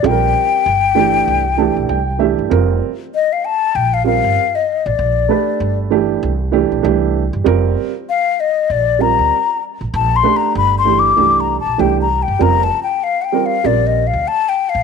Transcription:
0.03 0.31 A#1 loud
0.03 0.65 G3 medium
0.03 0.65 C4 medium
0.03 0.66 F4 medium
0.03 0.11 A4 medium
0.03 2.21 G5 loud
0.10 0.69 A#4 medium
0.66 1.21 G1 medium
0.95 1.41 E3 medium
0.95 1.41 A3 medium
0.95 1.42 D4 medium
0.95 1.42 G4 medium
1.28 1.71 C2 medium
1.57 1.96 E3 medium
1.57 1.96 A3 medium
1.57 1.97 D4 medium
1.57 1.97 G4 medium
1.57 1.87 A5 medium
1.77 1.88 A#1 medium
1.89 2.33 C2 medium
1.89 2.18 G5 medium
2.19 2.50 E3 medium
2.19 2.51 A3 medium
2.19 2.51 D4 medium
2.19 2.51 G4 medium
2.19 2.48 E5 medium
2.39 2.50 G1 medium
2.49 2.79 F1 loud
2.49 2.88 G3 medium
2.49 2.89 C4 medium
2.49 2.89 F4 medium
2.49 2.89 A#4 medium
3.15 3.34 D#5 loud
3.33 3.46 F5 medium
3.45 3.77 A5 loud
3.75 4.19 A#1 medium
3.75 3.95 G5 medium
3.94 4.06 F5 medium
4.04 4.43 G3 medium
4.04 4.43 C4 medium
4.04 4.43 F4 medium
4.04 4.44 A#4 medium
4.04 4.57 F5 loud
4.24 4.35 G1 medium
4.55 4.88 D#5 medium
4.86 4.97 A1 medium
4.86 5.79 D5 medium
4.99 5.26 A#1 loud
5.29 5.89 A3 medium
5.29 5.90 D4 medium
5.29 5.90 G4 medium
5.29 6.18 B4 medium
5.60 6.16 G1 medium
5.90 6.29 E3 medium
5.90 6.29 A3 medium
5.90 6.29 D4 medium
5.90 6.30 G4 medium
6.23 6.66 C2 medium
6.52 6.81 E3 medium
6.52 6.82 A3 medium
6.52 6.82 D4 medium
6.52 6.83 G4 medium
6.72 6.83 A#1 medium
6.83 7.28 C2 loud
6.83 7.21 E3 medium
6.83 7.22 A3 medium
6.83 7.22 D4 medium
6.83 7.22 G4 medium
7.33 7.45 G1 medium
7.44 7.74 F1 loud
7.44 7.90 G3 medium
7.44 7.91 C4 medium
7.44 7.91 F4 medium
7.44 7.91 A#4 loud
8.09 8.42 F5 loud
8.40 8.73 D#5 medium
8.70 9.13 A#1 medium
8.70 9.03 D5 loud
8.99 9.38 G3 medium
8.99 9.38 C4 medium
8.99 9.38 F4 medium
8.99 9.39 A#4 medium
8.99 9.63 A#5 loud
9.19 9.30 D2 medium
9.81 9.92 A1 medium
9.94 10.21 A#1 loud
9.94 10.18 A5 loud
10.16 10.38 C6 loud
10.23 10.84 A3 medium
10.23 10.84 D4 medium
10.23 10.85 G4 medium
10.23 11.12 B4 medium
10.37 10.56 A#5 medium
10.55 11.11 G1 loud
10.55 10.75 B5 loud
10.78 11.01 C6 loud
10.85 11.09 E3 medium
10.85 11.09 A3 medium
10.85 11.09 D4 medium
10.85 11.09 G4 medium
10.99 11.42 D6 loud
11.16 11.61 C2 medium
11.16 11.55 E3 medium
11.16 11.55 A3 medium
11.16 11.55 D4 medium
11.16 11.55 G4 medium
11.40 11.60 A#5 medium
11.60 11.82 A5 medium
11.66 11.78 A#1 medium
11.78 12.23 C2 loud
11.78 12.02 E3 medium
11.78 12.02 A3 medium
11.78 12.02 D4 medium
11.78 12.02 G4 medium
11.78 12.00 G5 medium
12.02 12.24 A#5 medium
12.23 12.44 G5 medium
12.28 12.39 G1 medium
12.39 12.68 F1 loud
12.39 12.63 G3 medium
12.39 12.64 C4 medium
12.39 12.64 F4 medium
12.39 12.64 A#4 medium
12.39 12.65 A#5 loud
12.64 12.83 A5 medium
12.83 13.05 G5 medium
13.04 13.23 F5 loud
13.22 13.26 F#5 medium
13.22 13.47 G5 medium
13.32 13.56 G3 medium
13.32 13.56 C4 medium
13.32 13.57 F4 medium
13.32 13.57 A#4 medium
13.46 13.67 F5 medium
13.64 14.08 A#1 loud
13.64 14.02 G3 medium
13.64 14.02 C4 medium
13.64 14.03 F4 medium
13.64 14.03 A#4 medium
13.64 13.88 D5 loud
13.87 14.08 D#5 medium
14.07 14.29 F5 medium
14.13 14.25 D2 medium
14.28 14.50 A5 loud
14.49 14.71 G5 medium
14.69 14.83 F5 medium
14.75 14.83 A1 medium

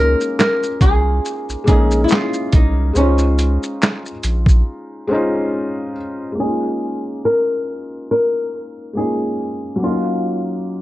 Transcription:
0.00 0.15 C#2 loud
0.00 0.64 G#3 medium
0.00 0.65 A#3 medium
0.00 0.66 C#4 medium
0.00 0.67 D#4 medium
0.00 0.68 F4 medium
0.00 0.38 A#4 medium
0.21 shaker soft
0.39 0.81 A#4 loud
0.39 snare loud
0.39 clap medium
0.39 shaker medium
0.63 shaker soft
0.81 1.20 C2 medium
0.81 1.67 G#4 loud
0.81 kick loud
0.81 closed hi-hat medium
0.81 shaker soft
1.25 shaker medium
1.49 1.56 A#1 soft
1.49 shaker soft
1.64 2.49 G#3 medium
1.64 2.50 A#3 medium
1.64 2.51 C#4 medium
1.64 kick medium
1.64 closed hi-hat medium
1.64 shaker soft
1.68 2.07 A#1 loud
1.68 2.52 D#4 medium
1.68 2.04 G#4 medium
1.68 2.53 G#4 medium
1.91 shaker soft
2.04 2.10 E4 medium
2.09 2.50 F4 medium
2.09 snare loud
2.09 clap medium
2.09 shaker medium
2.34 shaker soft
2.53 2.92 C2 medium
2.53 2.97 D#4 medium
2.53 kick medium
2.53 closed hi-hat medium
2.53 shaker soft
2.94 3.58 C#2 loud
2.94 4.08 G#3 medium
2.94 4.09 C#4 medium
2.94 5.92 C#4 medium
2.94 4.09 C5 medium
2.94 shaker medium
2.99 4.10 D#4 medium
2.99 4.11 F4 medium
3.19 shaker soft
3.39 closed hi-hat medium
3.39 shaker soft
3.63 shaker soft
3.82 snare medium
3.82 clap medium
3.82 shaker medium
4.06 shaker soft
4.23 4.63 A#1 medium
4.23 closed hi-hat medium
4.23 shaker medium
4.46 kick medium
4.46 shaker medium
5.07 5.92 G#3 medium
5.07 5.94 C#4 medium
5.07 5.93 C5 medium
5.13 5.95 D#4 medium
5.13 5.96 F4 medium
6.32 8.88 G#3 medium
6.32 8.90 A#3 soft
6.39 8.92 C#4 medium
6.39 8.93 D#4 soft
6.39 7.21 G#4 medium
6.46 8.95 F4 medium
7.25 8.10 A#4 loud
8.11 8.92 A#4 loud
8.93 9.80 G#3 soft
8.93 9.78 A#3 soft
8.93 9.81 C#4 soft
8.97 9.83 D#4 soft
8.97 9.84 F4 soft
8.97 9.83 G#4 medium
9.76 10.82 F#3 medium
9.76 10.82 A#3 medium
9.82 10.82 C#4 soft
9.82 10.82 D#4 soft
9.82 10.82 F4 medium
9.90 10.82 F4 medium

